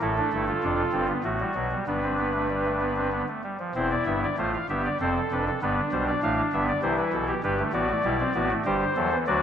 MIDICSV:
0, 0, Header, 1, 2, 480
1, 0, Start_track
1, 0, Key_signature, 0, "major"
1, 0, Tempo, 621762
1, 12, Time_signature, 3, 2, 24, 8
1, 3852, Tempo, 610998
1, 7336, End_track
2, 0, Start_track
2, 0, Title_t, "Pipe organ"
2, 0, Program_c, 0, 19
2, 10, Note_on_c, 0, 33, 91
2, 11, Note_on_c, 0, 57, 81
2, 12, Note_on_c, 0, 69, 74
2, 14, Note_on_c, 0, 45, 87
2, 15, Note_on_c, 0, 64, 76
2, 115, Note_off_c, 0, 64, 0
2, 137, Note_on_c, 0, 62, 72
2, 157, Note_off_c, 0, 33, 0
2, 159, Note_off_c, 0, 45, 0
2, 235, Note_off_c, 0, 62, 0
2, 253, Note_on_c, 0, 43, 89
2, 253, Note_on_c, 0, 64, 77
2, 255, Note_on_c, 0, 31, 82
2, 352, Note_off_c, 0, 64, 0
2, 371, Note_on_c, 0, 65, 68
2, 398, Note_off_c, 0, 43, 0
2, 399, Note_off_c, 0, 31, 0
2, 417, Note_off_c, 0, 57, 0
2, 490, Note_on_c, 0, 62, 70
2, 491, Note_on_c, 0, 41, 78
2, 494, Note_on_c, 0, 29, 82
2, 635, Note_off_c, 0, 62, 0
2, 636, Note_off_c, 0, 41, 0
2, 637, Note_off_c, 0, 29, 0
2, 715, Note_on_c, 0, 60, 71
2, 716, Note_on_c, 0, 31, 74
2, 718, Note_on_c, 0, 43, 79
2, 819, Note_off_c, 0, 60, 0
2, 826, Note_off_c, 0, 69, 0
2, 834, Note_on_c, 0, 59, 69
2, 865, Note_off_c, 0, 31, 0
2, 867, Note_off_c, 0, 43, 0
2, 879, Note_off_c, 0, 65, 0
2, 939, Note_off_c, 0, 59, 0
2, 958, Note_on_c, 0, 66, 68
2, 959, Note_on_c, 0, 33, 74
2, 962, Note_on_c, 0, 45, 76
2, 962, Note_on_c, 0, 57, 71
2, 1064, Note_off_c, 0, 57, 0
2, 1082, Note_on_c, 0, 55, 58
2, 1108, Note_off_c, 0, 33, 0
2, 1110, Note_off_c, 0, 45, 0
2, 1184, Note_off_c, 0, 55, 0
2, 1197, Note_on_c, 0, 47, 69
2, 1197, Note_on_c, 0, 54, 59
2, 1198, Note_on_c, 0, 35, 65
2, 1302, Note_off_c, 0, 54, 0
2, 1321, Note_on_c, 0, 55, 52
2, 1348, Note_off_c, 0, 35, 0
2, 1348, Note_off_c, 0, 47, 0
2, 1375, Note_off_c, 0, 66, 0
2, 1424, Note_off_c, 0, 55, 0
2, 1445, Note_on_c, 0, 31, 67
2, 1446, Note_on_c, 0, 59, 64
2, 1446, Note_on_c, 0, 71, 69
2, 1448, Note_on_c, 0, 62, 62
2, 1450, Note_on_c, 0, 43, 64
2, 1548, Note_off_c, 0, 59, 0
2, 1574, Note_on_c, 0, 60, 61
2, 1674, Note_off_c, 0, 60, 0
2, 1687, Note_on_c, 0, 59, 61
2, 1791, Note_off_c, 0, 59, 0
2, 1806, Note_on_c, 0, 57, 52
2, 1911, Note_off_c, 0, 57, 0
2, 1929, Note_on_c, 0, 55, 59
2, 2033, Note_off_c, 0, 55, 0
2, 2051, Note_on_c, 0, 57, 57
2, 2155, Note_off_c, 0, 57, 0
2, 2164, Note_on_c, 0, 59, 53
2, 2271, Note_off_c, 0, 59, 0
2, 2285, Note_on_c, 0, 60, 54
2, 2391, Note_off_c, 0, 60, 0
2, 2409, Note_on_c, 0, 59, 56
2, 2486, Note_off_c, 0, 31, 0
2, 2487, Note_off_c, 0, 71, 0
2, 2488, Note_off_c, 0, 62, 0
2, 2489, Note_off_c, 0, 43, 0
2, 2514, Note_off_c, 0, 59, 0
2, 2536, Note_on_c, 0, 57, 50
2, 2639, Note_off_c, 0, 57, 0
2, 2654, Note_on_c, 0, 55, 50
2, 2759, Note_off_c, 0, 55, 0
2, 2776, Note_on_c, 0, 53, 51
2, 2880, Note_off_c, 0, 53, 0
2, 2898, Note_on_c, 0, 28, 71
2, 2898, Note_on_c, 0, 60, 84
2, 2898, Note_on_c, 0, 64, 70
2, 2900, Note_on_c, 0, 40, 70
2, 2902, Note_on_c, 0, 72, 72
2, 3003, Note_off_c, 0, 72, 0
2, 3019, Note_on_c, 0, 74, 69
2, 3047, Note_off_c, 0, 28, 0
2, 3047, Note_off_c, 0, 60, 0
2, 3048, Note_off_c, 0, 40, 0
2, 3122, Note_off_c, 0, 74, 0
2, 3136, Note_on_c, 0, 59, 85
2, 3137, Note_on_c, 0, 31, 65
2, 3138, Note_on_c, 0, 76, 73
2, 3139, Note_on_c, 0, 43, 72
2, 3241, Note_off_c, 0, 76, 0
2, 3268, Note_on_c, 0, 74, 67
2, 3285, Note_off_c, 0, 31, 0
2, 3285, Note_off_c, 0, 59, 0
2, 3287, Note_off_c, 0, 43, 0
2, 3310, Note_off_c, 0, 64, 0
2, 3367, Note_off_c, 0, 74, 0
2, 3379, Note_on_c, 0, 57, 75
2, 3381, Note_on_c, 0, 45, 72
2, 3381, Note_on_c, 0, 72, 70
2, 3382, Note_on_c, 0, 33, 68
2, 3382, Note_on_c, 0, 65, 68
2, 3482, Note_off_c, 0, 72, 0
2, 3504, Note_on_c, 0, 77, 64
2, 3527, Note_off_c, 0, 57, 0
2, 3528, Note_off_c, 0, 33, 0
2, 3528, Note_off_c, 0, 45, 0
2, 3529, Note_off_c, 0, 65, 0
2, 3604, Note_off_c, 0, 77, 0
2, 3624, Note_on_c, 0, 43, 67
2, 3625, Note_on_c, 0, 31, 68
2, 3625, Note_on_c, 0, 67, 64
2, 3625, Note_on_c, 0, 76, 67
2, 3627, Note_on_c, 0, 59, 81
2, 3724, Note_off_c, 0, 76, 0
2, 3744, Note_on_c, 0, 74, 68
2, 3769, Note_off_c, 0, 43, 0
2, 3770, Note_off_c, 0, 31, 0
2, 3770, Note_off_c, 0, 67, 0
2, 3771, Note_off_c, 0, 59, 0
2, 3843, Note_off_c, 0, 74, 0
2, 3864, Note_on_c, 0, 69, 71
2, 3865, Note_on_c, 0, 29, 65
2, 3865, Note_on_c, 0, 41, 72
2, 3865, Note_on_c, 0, 60, 84
2, 3867, Note_on_c, 0, 72, 68
2, 4011, Note_off_c, 0, 29, 0
2, 4012, Note_off_c, 0, 41, 0
2, 4012, Note_off_c, 0, 60, 0
2, 4013, Note_off_c, 0, 72, 0
2, 4110, Note_on_c, 0, 41, 63
2, 4111, Note_on_c, 0, 29, 64
2, 4111, Note_on_c, 0, 62, 79
2, 4113, Note_on_c, 0, 71, 69
2, 4209, Note_off_c, 0, 71, 0
2, 4216, Note_off_c, 0, 69, 0
2, 4232, Note_on_c, 0, 69, 60
2, 4254, Note_off_c, 0, 41, 0
2, 4255, Note_off_c, 0, 29, 0
2, 4255, Note_off_c, 0, 62, 0
2, 4328, Note_off_c, 0, 69, 0
2, 4348, Note_on_c, 0, 43, 78
2, 4349, Note_on_c, 0, 59, 93
2, 4349, Note_on_c, 0, 62, 81
2, 4350, Note_on_c, 0, 31, 70
2, 4350, Note_on_c, 0, 71, 78
2, 4493, Note_off_c, 0, 43, 0
2, 4494, Note_off_c, 0, 59, 0
2, 4495, Note_off_c, 0, 31, 0
2, 4495, Note_off_c, 0, 71, 0
2, 4584, Note_on_c, 0, 55, 88
2, 4585, Note_on_c, 0, 35, 77
2, 4586, Note_on_c, 0, 72, 73
2, 4589, Note_on_c, 0, 47, 74
2, 4685, Note_off_c, 0, 72, 0
2, 4705, Note_on_c, 0, 74, 65
2, 4730, Note_off_c, 0, 55, 0
2, 4732, Note_off_c, 0, 35, 0
2, 4734, Note_off_c, 0, 47, 0
2, 4805, Note_off_c, 0, 74, 0
2, 4825, Note_on_c, 0, 45, 69
2, 4827, Note_on_c, 0, 77, 70
2, 4828, Note_on_c, 0, 33, 72
2, 4828, Note_on_c, 0, 57, 87
2, 4972, Note_off_c, 0, 45, 0
2, 4973, Note_off_c, 0, 33, 0
2, 4973, Note_off_c, 0, 77, 0
2, 4974, Note_off_c, 0, 57, 0
2, 5063, Note_on_c, 0, 43, 71
2, 5064, Note_on_c, 0, 31, 69
2, 5066, Note_on_c, 0, 59, 89
2, 5066, Note_on_c, 0, 76, 69
2, 5166, Note_off_c, 0, 76, 0
2, 5170, Note_off_c, 0, 62, 0
2, 5181, Note_on_c, 0, 74, 76
2, 5210, Note_off_c, 0, 31, 0
2, 5210, Note_off_c, 0, 43, 0
2, 5212, Note_off_c, 0, 59, 0
2, 5283, Note_off_c, 0, 74, 0
2, 5292, Note_on_c, 0, 48, 78
2, 5294, Note_on_c, 0, 64, 70
2, 5294, Note_on_c, 0, 72, 68
2, 5296, Note_on_c, 0, 52, 84
2, 5297, Note_on_c, 0, 36, 75
2, 5398, Note_off_c, 0, 72, 0
2, 5413, Note_on_c, 0, 71, 64
2, 5442, Note_off_c, 0, 48, 0
2, 5445, Note_off_c, 0, 36, 0
2, 5517, Note_off_c, 0, 71, 0
2, 5532, Note_on_c, 0, 47, 67
2, 5534, Note_on_c, 0, 69, 70
2, 5536, Note_on_c, 0, 35, 72
2, 5638, Note_off_c, 0, 69, 0
2, 5651, Note_on_c, 0, 67, 65
2, 5682, Note_off_c, 0, 47, 0
2, 5684, Note_off_c, 0, 35, 0
2, 5706, Note_off_c, 0, 64, 0
2, 5707, Note_off_c, 0, 52, 0
2, 5756, Note_off_c, 0, 67, 0
2, 5775, Note_on_c, 0, 43, 82
2, 5777, Note_on_c, 0, 31, 79
2, 5777, Note_on_c, 0, 67, 93
2, 5777, Note_on_c, 0, 71, 83
2, 5779, Note_on_c, 0, 55, 85
2, 5880, Note_off_c, 0, 55, 0
2, 5896, Note_on_c, 0, 57, 74
2, 5923, Note_off_c, 0, 43, 0
2, 5925, Note_off_c, 0, 31, 0
2, 5925, Note_off_c, 0, 67, 0
2, 5925, Note_off_c, 0, 71, 0
2, 5999, Note_off_c, 0, 57, 0
2, 6006, Note_on_c, 0, 59, 77
2, 6007, Note_on_c, 0, 33, 81
2, 6007, Note_on_c, 0, 74, 74
2, 6009, Note_on_c, 0, 66, 90
2, 6010, Note_on_c, 0, 45, 82
2, 6112, Note_off_c, 0, 59, 0
2, 6137, Note_on_c, 0, 57, 67
2, 6158, Note_off_c, 0, 33, 0
2, 6159, Note_off_c, 0, 66, 0
2, 6160, Note_off_c, 0, 45, 0
2, 6238, Note_off_c, 0, 57, 0
2, 6250, Note_on_c, 0, 35, 77
2, 6251, Note_on_c, 0, 47, 73
2, 6251, Note_on_c, 0, 55, 75
2, 6251, Note_on_c, 0, 64, 92
2, 6355, Note_off_c, 0, 55, 0
2, 6375, Note_on_c, 0, 60, 75
2, 6399, Note_off_c, 0, 35, 0
2, 6400, Note_off_c, 0, 47, 0
2, 6400, Note_off_c, 0, 64, 0
2, 6477, Note_off_c, 0, 60, 0
2, 6490, Note_on_c, 0, 33, 74
2, 6491, Note_on_c, 0, 59, 75
2, 6492, Note_on_c, 0, 45, 81
2, 6494, Note_on_c, 0, 66, 93
2, 6594, Note_off_c, 0, 59, 0
2, 6613, Note_on_c, 0, 57, 76
2, 6628, Note_off_c, 0, 74, 0
2, 6640, Note_off_c, 0, 33, 0
2, 6641, Note_off_c, 0, 45, 0
2, 6642, Note_off_c, 0, 66, 0
2, 6716, Note_off_c, 0, 57, 0
2, 6732, Note_on_c, 0, 31, 77
2, 6732, Note_on_c, 0, 43, 78
2, 6733, Note_on_c, 0, 67, 97
2, 6733, Note_on_c, 0, 72, 72
2, 6734, Note_on_c, 0, 55, 76
2, 6882, Note_off_c, 0, 31, 0
2, 6882, Note_off_c, 0, 43, 0
2, 6882, Note_off_c, 0, 67, 0
2, 6883, Note_off_c, 0, 55, 0
2, 6971, Note_on_c, 0, 40, 76
2, 6973, Note_on_c, 0, 69, 86
2, 6975, Note_on_c, 0, 52, 77
2, 6975, Note_on_c, 0, 54, 70
2, 7078, Note_off_c, 0, 54, 0
2, 7082, Note_off_c, 0, 52, 0
2, 7098, Note_on_c, 0, 52, 75
2, 7121, Note_off_c, 0, 40, 0
2, 7123, Note_off_c, 0, 69, 0
2, 7148, Note_off_c, 0, 72, 0
2, 7200, Note_off_c, 0, 52, 0
2, 7215, Note_on_c, 0, 74, 82
2, 7216, Note_on_c, 0, 38, 93
2, 7216, Note_on_c, 0, 50, 86
2, 7218, Note_on_c, 0, 54, 85
2, 7218, Note_on_c, 0, 66, 102
2, 7336, Note_off_c, 0, 38, 0
2, 7336, Note_off_c, 0, 50, 0
2, 7336, Note_off_c, 0, 54, 0
2, 7336, Note_off_c, 0, 66, 0
2, 7336, Note_off_c, 0, 74, 0
2, 7336, End_track
0, 0, End_of_file